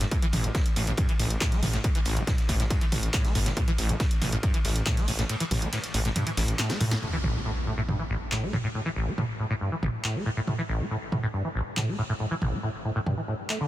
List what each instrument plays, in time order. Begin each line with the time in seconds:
0.00 acid bass A2, snare, closed hi-hat
0.11 acid bass A2, kick, closed hi-hat, ride
0.22 acid bass E3, closed hi-hat
0.32 acid bass A1, detuned saw bass A1, mid tom, open hi-hat, ride
0.44 acid bass C4, closed hi-hat
0.54 acid bass A2, kick, snare, closed hi-hat, ride
0.66 closed hi-hat
0.76 detuned saw bass A1, acid bass A2, snare, open hi-hat, ride
0.87 acid bass A2, closed hi-hat
0.97 acid bass G2, kick, closed hi-hat, mid tom, ride
1.09 acid bass E3, closed hi-hat
1.19 detuned saw bass A1, acid bass A1, open hi-hat, ride
1.30 closed hi-hat
1.41 acid bass A2, kick, snare, clap, closed hi-hat
1.52 acid bass A3, snare, closed hi-hat
1.63 detuned saw bass A1, acid bass A2, mid tom, open hi-hat, ride
1.73 acid bass A2, snare, closed hi-hat
1.84 acid bass A2, kick, closed hi-hat, ride
1.95 acid bass E3, closed hi-hat
2.05 detuned saw bass A1, acid bass A1, open hi-hat, ride
2.17 acid bass C4, closed hi-hat, ride
2.27 acid bass A2, kick, snare, closed hi-hat, mid tom, ride
2.38 snare, closed hi-hat
2.49 detuned saw bass A1, acid bass A2, kick, open hi-hat, ride
2.60 acid bass A2, snare, closed hi-hat
2.70 acid bass G2, kick, closed hi-hat, ride
2.81 acid bass E3, closed hi-hat
2.92 acid bass A1, detuned saw bass A1, mid tom, open hi-hat
3.03 closed hi-hat
3.13 acid bass A2, kick, snare, clap, closed hi-hat, ride
3.24 acid bass A3, snare, closed hi-hat
3.35 detuned saw bass G1, acid bass A2, open hi-hat, ride
3.46 acid bass A2, snare, closed hi-hat
3.57 acid bass A2, kick, closed hi-hat, mid tom, ride
3.68 acid bass E3, closed hi-hat
3.78 acid bass A1, detuned saw bass A1, open hi-hat, ride
3.89 acid bass C4, closed hi-hat
4.00 acid bass A2, kick, snare, closed hi-hat, ride
4.11 closed hi-hat
4.21 detuned saw bass A1, acid bass A2, snare, mid tom, open hi-hat, ride
4.32 acid bass A2, closed hi-hat
4.43 acid bass G2, kick, closed hi-hat, ride
4.54 acid bass E3, closed hi-hat
4.65 acid bass A1, detuned saw bass A1, snare, open hi-hat, ride
4.76 closed hi-hat
4.86 acid bass A2, kick, snare, clap, closed hi-hat, mid tom, ride
4.97 acid bass A3, snare, closed hi-hat
5.08 detuned saw bass A1, acid bass A2, open hi-hat, ride
5.18 acid bass A2, snare, closed hi-hat
5.29 acid bass A2, closed hi-hat, ride
5.40 acid bass E3, closed hi-hat
5.51 detuned saw bass A1, acid bass A1, mid tom, open hi-hat, ride
5.62 acid bass C4, closed hi-hat, ride
5.73 acid bass A2, snare, closed hi-hat, ride
5.84 snare, closed hi-hat
5.94 detuned saw bass A1, acid bass A2, open hi-hat, ride
6.05 acid bass A2, snare, closed hi-hat
6.16 acid bass G2, closed hi-hat, mid tom, ride
6.27 acid bass E3, closed hi-hat
6.37 detuned saw bass A1, acid bass A1, snare, open hi-hat, ride
6.48 closed hi-hat
6.59 acid bass A2, snare, clap, closed hi-hat, ride
6.69 acid bass A3, snare, closed hi-hat, ride
6.80 detuned saw bass A2, acid bass A2, mid tom, open hi-hat
6.91 acid bass A2, snare, closed hi-hat, ride
7.02 acid bass A2, impact
7.13 acid bass E3
7.24 acid bass A1, mid tom
7.35 acid bass C4
7.45 acid bass A2
7.67 acid bass A2
7.78 acid bass A2
7.88 acid bass G2, mid tom
7.99 acid bass E3
8.10 acid bass A1
8.32 acid bass A2, clap
8.43 acid bass A3
8.53 acid bass A2, mid tom
8.64 acid bass A2
8.75 acid bass A2
8.86 acid bass E3
8.96 acid bass A1
9.07 acid bass C4
9.18 acid bass A2, mid tom
9.40 acid bass A2
9.50 acid bass A2
9.61 acid bass G2
9.72 acid bass E3
9.83 acid bass A1, mid tom
10.04 acid bass A2, clap
10.15 acid bass A3
10.26 acid bass A2
10.37 acid bass A2
10.47 acid bass A2, mid tom
10.58 acid bass E3
10.69 acid bass A1
10.80 acid bass C4
10.91 acid bass A2
11.12 acid bass A2, mid tom
11.23 acid bass A2
11.34 acid bass G2
11.45 acid bass E3
11.55 acid bass A1
11.77 acid bass A2, clap, mid tom
11.88 acid bass A3
11.99 acid bass A2
12.09 acid bass A2
12.20 acid bass A2
12.31 acid bass E3
12.42 acid bass A1, mid tom
12.53 acid bass C4
12.63 acid bass A2
12.85 acid bass A2
12.96 acid bass A2
13.06 acid bass G2, mid tom
13.18 acid bass E3
13.28 acid bass A2
13.50 acid bass A3, clap
13.61 acid bass D3